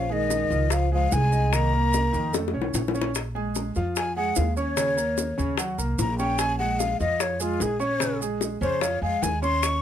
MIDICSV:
0, 0, Header, 1, 6, 480
1, 0, Start_track
1, 0, Key_signature, -5, "minor"
1, 0, Tempo, 405405
1, 1808, Time_signature, 4, 2, 24, 8
1, 11626, End_track
2, 0, Start_track
2, 0, Title_t, "Flute"
2, 0, Program_c, 0, 73
2, 0, Note_on_c, 0, 77, 83
2, 147, Note_on_c, 0, 75, 91
2, 164, Note_off_c, 0, 77, 0
2, 858, Note_on_c, 0, 77, 96
2, 876, Note_off_c, 0, 75, 0
2, 1093, Note_off_c, 0, 77, 0
2, 1111, Note_on_c, 0, 77, 88
2, 1339, Note_on_c, 0, 80, 98
2, 1356, Note_off_c, 0, 77, 0
2, 1813, Note_on_c, 0, 82, 96
2, 1830, Note_off_c, 0, 80, 0
2, 2771, Note_off_c, 0, 82, 0
2, 4701, Note_on_c, 0, 80, 84
2, 4918, Note_off_c, 0, 80, 0
2, 4929, Note_on_c, 0, 78, 95
2, 5171, Note_on_c, 0, 77, 80
2, 5189, Note_off_c, 0, 78, 0
2, 5410, Note_off_c, 0, 77, 0
2, 5420, Note_on_c, 0, 73, 83
2, 6566, Note_off_c, 0, 73, 0
2, 7104, Note_on_c, 0, 82, 74
2, 7314, Note_off_c, 0, 82, 0
2, 7321, Note_on_c, 0, 79, 94
2, 7563, Note_on_c, 0, 80, 106
2, 7581, Note_off_c, 0, 79, 0
2, 7792, Note_off_c, 0, 80, 0
2, 7799, Note_on_c, 0, 78, 89
2, 8044, Note_on_c, 0, 77, 86
2, 8062, Note_off_c, 0, 78, 0
2, 8285, Note_off_c, 0, 77, 0
2, 8293, Note_on_c, 0, 75, 96
2, 8541, Note_on_c, 0, 73, 85
2, 8559, Note_off_c, 0, 75, 0
2, 8779, Note_on_c, 0, 65, 72
2, 8797, Note_off_c, 0, 73, 0
2, 9025, Note_on_c, 0, 68, 71
2, 9043, Note_off_c, 0, 65, 0
2, 9251, Note_off_c, 0, 68, 0
2, 9258, Note_on_c, 0, 73, 96
2, 9698, Note_off_c, 0, 73, 0
2, 10205, Note_on_c, 0, 72, 96
2, 10444, Note_on_c, 0, 73, 82
2, 10461, Note_off_c, 0, 72, 0
2, 10681, Note_off_c, 0, 73, 0
2, 10689, Note_on_c, 0, 77, 89
2, 10924, Note_on_c, 0, 80, 89
2, 10942, Note_off_c, 0, 77, 0
2, 11154, Note_off_c, 0, 80, 0
2, 11161, Note_on_c, 0, 84, 95
2, 11402, Note_on_c, 0, 85, 103
2, 11419, Note_off_c, 0, 84, 0
2, 11626, Note_off_c, 0, 85, 0
2, 11626, End_track
3, 0, Start_track
3, 0, Title_t, "Grand piano"
3, 0, Program_c, 1, 0
3, 115, Note_on_c, 1, 68, 71
3, 120, Note_on_c, 1, 56, 66
3, 514, Note_off_c, 1, 68, 0
3, 517, Note_off_c, 1, 56, 0
3, 594, Note_on_c, 1, 53, 67
3, 595, Note_on_c, 1, 65, 64
3, 993, Note_off_c, 1, 53, 0
3, 994, Note_off_c, 1, 65, 0
3, 1085, Note_on_c, 1, 56, 62
3, 1088, Note_on_c, 1, 68, 72
3, 1480, Note_off_c, 1, 56, 0
3, 1482, Note_off_c, 1, 68, 0
3, 1562, Note_on_c, 1, 63, 69
3, 1567, Note_on_c, 1, 75, 71
3, 1761, Note_off_c, 1, 63, 0
3, 1765, Note_off_c, 1, 75, 0
3, 1807, Note_on_c, 1, 63, 68
3, 1811, Note_on_c, 1, 51, 66
3, 2005, Note_off_c, 1, 63, 0
3, 2007, Note_off_c, 1, 51, 0
3, 2045, Note_on_c, 1, 58, 62
3, 2057, Note_on_c, 1, 70, 59
3, 2440, Note_off_c, 1, 58, 0
3, 2447, Note_off_c, 1, 70, 0
3, 2518, Note_on_c, 1, 51, 75
3, 2519, Note_on_c, 1, 63, 72
3, 2719, Note_off_c, 1, 51, 0
3, 2720, Note_off_c, 1, 63, 0
3, 2758, Note_on_c, 1, 57, 65
3, 2763, Note_on_c, 1, 69, 65
3, 2959, Note_off_c, 1, 57, 0
3, 2962, Note_off_c, 1, 69, 0
3, 3002, Note_on_c, 1, 61, 66
3, 3005, Note_on_c, 1, 73, 66
3, 3399, Note_off_c, 1, 61, 0
3, 3400, Note_off_c, 1, 73, 0
3, 3488, Note_on_c, 1, 61, 75
3, 3490, Note_on_c, 1, 73, 71
3, 3685, Note_off_c, 1, 61, 0
3, 3686, Note_off_c, 1, 73, 0
3, 3964, Note_on_c, 1, 56, 68
3, 3968, Note_on_c, 1, 68, 70
3, 3969, Note_on_c, 1, 80, 72
3, 4360, Note_off_c, 1, 56, 0
3, 4362, Note_off_c, 1, 68, 0
3, 4363, Note_off_c, 1, 80, 0
3, 4451, Note_on_c, 1, 53, 68
3, 4454, Note_on_c, 1, 65, 69
3, 4463, Note_on_c, 1, 77, 67
3, 4843, Note_off_c, 1, 53, 0
3, 4845, Note_off_c, 1, 65, 0
3, 4851, Note_off_c, 1, 77, 0
3, 4930, Note_on_c, 1, 56, 61
3, 4931, Note_on_c, 1, 68, 71
3, 4941, Note_on_c, 1, 80, 66
3, 5323, Note_off_c, 1, 56, 0
3, 5324, Note_off_c, 1, 68, 0
3, 5329, Note_off_c, 1, 80, 0
3, 5406, Note_on_c, 1, 61, 72
3, 5410, Note_on_c, 1, 73, 77
3, 5415, Note_on_c, 1, 85, 75
3, 5604, Note_off_c, 1, 61, 0
3, 5606, Note_off_c, 1, 73, 0
3, 5609, Note_off_c, 1, 85, 0
3, 5644, Note_on_c, 1, 49, 72
3, 5644, Note_on_c, 1, 61, 77
3, 5646, Note_on_c, 1, 73, 69
3, 5843, Note_off_c, 1, 49, 0
3, 5843, Note_off_c, 1, 61, 0
3, 5844, Note_off_c, 1, 73, 0
3, 5877, Note_on_c, 1, 58, 70
3, 5877, Note_on_c, 1, 70, 61
3, 5888, Note_on_c, 1, 82, 68
3, 6275, Note_off_c, 1, 58, 0
3, 6275, Note_off_c, 1, 70, 0
3, 6281, Note_off_c, 1, 82, 0
3, 6364, Note_on_c, 1, 49, 76
3, 6366, Note_on_c, 1, 61, 78
3, 6373, Note_on_c, 1, 73, 72
3, 6562, Note_off_c, 1, 49, 0
3, 6564, Note_off_c, 1, 61, 0
3, 6567, Note_off_c, 1, 73, 0
3, 6597, Note_on_c, 1, 54, 69
3, 6602, Note_on_c, 1, 66, 73
3, 6602, Note_on_c, 1, 78, 71
3, 6798, Note_off_c, 1, 54, 0
3, 6801, Note_off_c, 1, 66, 0
3, 6801, Note_off_c, 1, 78, 0
3, 6843, Note_on_c, 1, 58, 66
3, 6848, Note_on_c, 1, 70, 63
3, 6851, Note_on_c, 1, 82, 67
3, 7238, Note_off_c, 1, 58, 0
3, 7241, Note_off_c, 1, 70, 0
3, 7243, Note_off_c, 1, 82, 0
3, 7331, Note_on_c, 1, 61, 79
3, 7337, Note_on_c, 1, 73, 79
3, 7337, Note_on_c, 1, 85, 88
3, 7722, Note_off_c, 1, 61, 0
3, 7726, Note_off_c, 1, 73, 0
3, 7726, Note_off_c, 1, 85, 0
3, 7803, Note_on_c, 1, 56, 72
3, 7806, Note_on_c, 1, 68, 64
3, 7811, Note_on_c, 1, 80, 63
3, 8198, Note_off_c, 1, 56, 0
3, 8200, Note_off_c, 1, 68, 0
3, 8202, Note_off_c, 1, 80, 0
3, 8289, Note_on_c, 1, 53, 71
3, 8295, Note_on_c, 1, 65, 65
3, 8298, Note_on_c, 1, 77, 64
3, 8681, Note_off_c, 1, 53, 0
3, 8684, Note_off_c, 1, 65, 0
3, 8686, Note_off_c, 1, 77, 0
3, 8759, Note_on_c, 1, 56, 70
3, 8765, Note_on_c, 1, 68, 69
3, 8765, Note_on_c, 1, 80, 62
3, 9155, Note_off_c, 1, 56, 0
3, 9158, Note_off_c, 1, 68, 0
3, 9158, Note_off_c, 1, 80, 0
3, 9232, Note_on_c, 1, 61, 87
3, 9234, Note_on_c, 1, 73, 78
3, 9236, Note_on_c, 1, 85, 79
3, 9434, Note_off_c, 1, 61, 0
3, 9435, Note_off_c, 1, 73, 0
3, 9437, Note_off_c, 1, 85, 0
3, 9472, Note_on_c, 1, 61, 82
3, 9473, Note_on_c, 1, 49, 74
3, 9476, Note_on_c, 1, 73, 70
3, 9674, Note_off_c, 1, 61, 0
3, 9675, Note_off_c, 1, 49, 0
3, 9676, Note_off_c, 1, 73, 0
3, 9713, Note_on_c, 1, 56, 70
3, 9717, Note_on_c, 1, 68, 69
3, 9724, Note_on_c, 1, 80, 64
3, 10111, Note_off_c, 1, 56, 0
3, 10114, Note_off_c, 1, 68, 0
3, 10118, Note_off_c, 1, 80, 0
3, 10200, Note_on_c, 1, 49, 73
3, 10201, Note_on_c, 1, 61, 72
3, 10204, Note_on_c, 1, 73, 83
3, 10399, Note_off_c, 1, 49, 0
3, 10399, Note_off_c, 1, 61, 0
3, 10401, Note_off_c, 1, 73, 0
3, 10434, Note_on_c, 1, 53, 65
3, 10436, Note_on_c, 1, 65, 61
3, 10439, Note_on_c, 1, 77, 73
3, 10635, Note_off_c, 1, 53, 0
3, 10636, Note_off_c, 1, 65, 0
3, 10638, Note_off_c, 1, 77, 0
3, 10682, Note_on_c, 1, 56, 62
3, 10685, Note_on_c, 1, 68, 61
3, 10685, Note_on_c, 1, 80, 68
3, 11077, Note_off_c, 1, 56, 0
3, 11078, Note_off_c, 1, 80, 0
3, 11079, Note_off_c, 1, 68, 0
3, 11155, Note_on_c, 1, 61, 76
3, 11158, Note_on_c, 1, 73, 69
3, 11159, Note_on_c, 1, 85, 77
3, 11552, Note_off_c, 1, 61, 0
3, 11554, Note_off_c, 1, 73, 0
3, 11555, Note_off_c, 1, 85, 0
3, 11626, End_track
4, 0, Start_track
4, 0, Title_t, "Trombone"
4, 0, Program_c, 2, 57
4, 0, Note_on_c, 2, 53, 70
4, 142, Note_on_c, 2, 51, 72
4, 160, Note_off_c, 2, 53, 0
4, 855, Note_on_c, 2, 53, 79
4, 872, Note_off_c, 2, 51, 0
4, 1086, Note_off_c, 2, 53, 0
4, 1093, Note_on_c, 2, 53, 76
4, 1344, Note_on_c, 2, 56, 79
4, 1361, Note_off_c, 2, 53, 0
4, 1823, Note_on_c, 2, 58, 88
4, 1841, Note_off_c, 2, 56, 0
4, 2776, Note_off_c, 2, 58, 0
4, 11626, End_track
5, 0, Start_track
5, 0, Title_t, "Upright bass"
5, 0, Program_c, 3, 32
5, 0, Note_on_c, 3, 34, 91
5, 534, Note_off_c, 3, 34, 0
5, 597, Note_on_c, 3, 37, 85
5, 1276, Note_off_c, 3, 37, 0
5, 1329, Note_on_c, 3, 36, 94
5, 2458, Note_off_c, 3, 36, 0
5, 2539, Note_on_c, 3, 41, 82
5, 2981, Note_off_c, 3, 41, 0
5, 3014, Note_on_c, 3, 35, 66
5, 3235, Note_off_c, 3, 35, 0
5, 3244, Note_on_c, 3, 34, 81
5, 4375, Note_off_c, 3, 34, 0
5, 4453, Note_on_c, 3, 41, 72
5, 5123, Note_off_c, 3, 41, 0
5, 5176, Note_on_c, 3, 39, 89
5, 6300, Note_off_c, 3, 39, 0
5, 6380, Note_on_c, 3, 39, 82
5, 6820, Note_off_c, 3, 39, 0
5, 6849, Note_on_c, 3, 36, 68
5, 7071, Note_off_c, 3, 36, 0
5, 7088, Note_on_c, 3, 34, 94
5, 8215, Note_off_c, 3, 34, 0
5, 8293, Note_on_c, 3, 41, 86
5, 8961, Note_off_c, 3, 41, 0
5, 9005, Note_on_c, 3, 34, 92
5, 10133, Note_off_c, 3, 34, 0
5, 10195, Note_on_c, 3, 41, 86
5, 10646, Note_off_c, 3, 41, 0
5, 10675, Note_on_c, 3, 41, 74
5, 10903, Note_off_c, 3, 41, 0
5, 10920, Note_on_c, 3, 39, 81
5, 11626, Note_off_c, 3, 39, 0
5, 11626, End_track
6, 0, Start_track
6, 0, Title_t, "Drums"
6, 111, Note_on_c, 9, 60, 31
6, 229, Note_off_c, 9, 60, 0
6, 360, Note_on_c, 9, 60, 53
6, 363, Note_on_c, 9, 70, 63
6, 479, Note_off_c, 9, 60, 0
6, 481, Note_off_c, 9, 70, 0
6, 597, Note_on_c, 9, 60, 36
6, 607, Note_on_c, 9, 70, 28
6, 715, Note_off_c, 9, 60, 0
6, 725, Note_off_c, 9, 70, 0
6, 833, Note_on_c, 9, 60, 73
6, 843, Note_on_c, 9, 70, 59
6, 952, Note_off_c, 9, 60, 0
6, 961, Note_off_c, 9, 70, 0
6, 1323, Note_on_c, 9, 70, 77
6, 1326, Note_on_c, 9, 60, 33
6, 1326, Note_on_c, 9, 61, 64
6, 1442, Note_off_c, 9, 70, 0
6, 1444, Note_off_c, 9, 60, 0
6, 1444, Note_off_c, 9, 61, 0
6, 1569, Note_on_c, 9, 60, 31
6, 1570, Note_on_c, 9, 70, 28
6, 1688, Note_off_c, 9, 60, 0
6, 1688, Note_off_c, 9, 70, 0
6, 1807, Note_on_c, 9, 60, 64
6, 1815, Note_on_c, 9, 70, 73
6, 1926, Note_off_c, 9, 60, 0
6, 1933, Note_off_c, 9, 70, 0
6, 2053, Note_on_c, 9, 60, 29
6, 2172, Note_off_c, 9, 60, 0
6, 2290, Note_on_c, 9, 70, 69
6, 2300, Note_on_c, 9, 60, 58
6, 2408, Note_off_c, 9, 70, 0
6, 2419, Note_off_c, 9, 60, 0
6, 2533, Note_on_c, 9, 70, 29
6, 2543, Note_on_c, 9, 60, 37
6, 2651, Note_off_c, 9, 70, 0
6, 2661, Note_off_c, 9, 60, 0
6, 2768, Note_on_c, 9, 70, 68
6, 2776, Note_on_c, 9, 60, 97
6, 2886, Note_off_c, 9, 70, 0
6, 2894, Note_off_c, 9, 60, 0
6, 2935, Note_on_c, 9, 60, 71
6, 3054, Note_off_c, 9, 60, 0
6, 3097, Note_on_c, 9, 61, 81
6, 3215, Note_off_c, 9, 61, 0
6, 3243, Note_on_c, 9, 70, 66
6, 3256, Note_on_c, 9, 61, 72
6, 3362, Note_off_c, 9, 70, 0
6, 3374, Note_off_c, 9, 61, 0
6, 3412, Note_on_c, 9, 61, 86
6, 3491, Note_on_c, 9, 70, 32
6, 3531, Note_off_c, 9, 61, 0
6, 3570, Note_on_c, 9, 61, 83
6, 3610, Note_off_c, 9, 70, 0
6, 3688, Note_off_c, 9, 61, 0
6, 3728, Note_on_c, 9, 70, 68
6, 3739, Note_on_c, 9, 60, 66
6, 3846, Note_off_c, 9, 70, 0
6, 3857, Note_off_c, 9, 60, 0
6, 3981, Note_on_c, 9, 60, 29
6, 4100, Note_off_c, 9, 60, 0
6, 4204, Note_on_c, 9, 70, 64
6, 4216, Note_on_c, 9, 60, 53
6, 4322, Note_off_c, 9, 70, 0
6, 4335, Note_off_c, 9, 60, 0
6, 4442, Note_on_c, 9, 70, 30
6, 4455, Note_on_c, 9, 60, 37
6, 4561, Note_off_c, 9, 70, 0
6, 4573, Note_off_c, 9, 60, 0
6, 4687, Note_on_c, 9, 70, 66
6, 4700, Note_on_c, 9, 60, 66
6, 4806, Note_off_c, 9, 70, 0
6, 4818, Note_off_c, 9, 60, 0
6, 5158, Note_on_c, 9, 70, 77
6, 5169, Note_on_c, 9, 60, 30
6, 5169, Note_on_c, 9, 61, 74
6, 5276, Note_off_c, 9, 70, 0
6, 5287, Note_off_c, 9, 60, 0
6, 5287, Note_off_c, 9, 61, 0
6, 5409, Note_on_c, 9, 70, 30
6, 5413, Note_on_c, 9, 60, 30
6, 5528, Note_off_c, 9, 70, 0
6, 5531, Note_off_c, 9, 60, 0
6, 5648, Note_on_c, 9, 70, 71
6, 5649, Note_on_c, 9, 60, 66
6, 5767, Note_off_c, 9, 60, 0
6, 5767, Note_off_c, 9, 70, 0
6, 5892, Note_on_c, 9, 60, 31
6, 5894, Note_on_c, 9, 70, 57
6, 6010, Note_off_c, 9, 60, 0
6, 6013, Note_off_c, 9, 70, 0
6, 6129, Note_on_c, 9, 60, 57
6, 6131, Note_on_c, 9, 70, 73
6, 6248, Note_off_c, 9, 60, 0
6, 6249, Note_off_c, 9, 70, 0
6, 6377, Note_on_c, 9, 60, 33
6, 6380, Note_on_c, 9, 70, 29
6, 6495, Note_off_c, 9, 60, 0
6, 6498, Note_off_c, 9, 70, 0
6, 6601, Note_on_c, 9, 60, 72
6, 6615, Note_on_c, 9, 70, 67
6, 6719, Note_off_c, 9, 60, 0
6, 6733, Note_off_c, 9, 70, 0
6, 6854, Note_on_c, 9, 70, 62
6, 6973, Note_off_c, 9, 70, 0
6, 7089, Note_on_c, 9, 70, 67
6, 7091, Note_on_c, 9, 60, 30
6, 7091, Note_on_c, 9, 61, 72
6, 7207, Note_off_c, 9, 70, 0
6, 7209, Note_off_c, 9, 60, 0
6, 7209, Note_off_c, 9, 61, 0
6, 7329, Note_on_c, 9, 70, 30
6, 7334, Note_on_c, 9, 60, 32
6, 7447, Note_off_c, 9, 70, 0
6, 7452, Note_off_c, 9, 60, 0
6, 7559, Note_on_c, 9, 70, 67
6, 7563, Note_on_c, 9, 60, 65
6, 7678, Note_off_c, 9, 70, 0
6, 7682, Note_off_c, 9, 60, 0
6, 7814, Note_on_c, 9, 60, 29
6, 7932, Note_off_c, 9, 60, 0
6, 8050, Note_on_c, 9, 70, 76
6, 8054, Note_on_c, 9, 60, 56
6, 8169, Note_off_c, 9, 70, 0
6, 8172, Note_off_c, 9, 60, 0
6, 8290, Note_on_c, 9, 70, 31
6, 8293, Note_on_c, 9, 60, 35
6, 8409, Note_off_c, 9, 70, 0
6, 8411, Note_off_c, 9, 60, 0
6, 8526, Note_on_c, 9, 70, 66
6, 8527, Note_on_c, 9, 60, 71
6, 8645, Note_off_c, 9, 70, 0
6, 8646, Note_off_c, 9, 60, 0
6, 8762, Note_on_c, 9, 70, 58
6, 8880, Note_off_c, 9, 70, 0
6, 9001, Note_on_c, 9, 60, 31
6, 9001, Note_on_c, 9, 61, 72
6, 9011, Note_on_c, 9, 70, 72
6, 9119, Note_off_c, 9, 60, 0
6, 9119, Note_off_c, 9, 61, 0
6, 9129, Note_off_c, 9, 70, 0
6, 9229, Note_on_c, 9, 60, 32
6, 9240, Note_on_c, 9, 70, 29
6, 9347, Note_off_c, 9, 60, 0
6, 9358, Note_off_c, 9, 70, 0
6, 9474, Note_on_c, 9, 60, 72
6, 9488, Note_on_c, 9, 70, 72
6, 9593, Note_off_c, 9, 60, 0
6, 9606, Note_off_c, 9, 70, 0
6, 9732, Note_on_c, 9, 60, 32
6, 9732, Note_on_c, 9, 70, 56
6, 9850, Note_off_c, 9, 60, 0
6, 9851, Note_off_c, 9, 70, 0
6, 9956, Note_on_c, 9, 60, 59
6, 9966, Note_on_c, 9, 70, 72
6, 10075, Note_off_c, 9, 60, 0
6, 10084, Note_off_c, 9, 70, 0
6, 10200, Note_on_c, 9, 60, 36
6, 10213, Note_on_c, 9, 70, 30
6, 10318, Note_off_c, 9, 60, 0
6, 10331, Note_off_c, 9, 70, 0
6, 10436, Note_on_c, 9, 60, 72
6, 10454, Note_on_c, 9, 70, 65
6, 10554, Note_off_c, 9, 60, 0
6, 10573, Note_off_c, 9, 70, 0
6, 10926, Note_on_c, 9, 60, 31
6, 10926, Note_on_c, 9, 61, 83
6, 10933, Note_on_c, 9, 70, 76
6, 11044, Note_off_c, 9, 60, 0
6, 11044, Note_off_c, 9, 61, 0
6, 11052, Note_off_c, 9, 70, 0
6, 11161, Note_on_c, 9, 60, 30
6, 11167, Note_on_c, 9, 70, 32
6, 11280, Note_off_c, 9, 60, 0
6, 11285, Note_off_c, 9, 70, 0
6, 11402, Note_on_c, 9, 70, 74
6, 11403, Note_on_c, 9, 60, 66
6, 11521, Note_off_c, 9, 60, 0
6, 11521, Note_off_c, 9, 70, 0
6, 11626, End_track
0, 0, End_of_file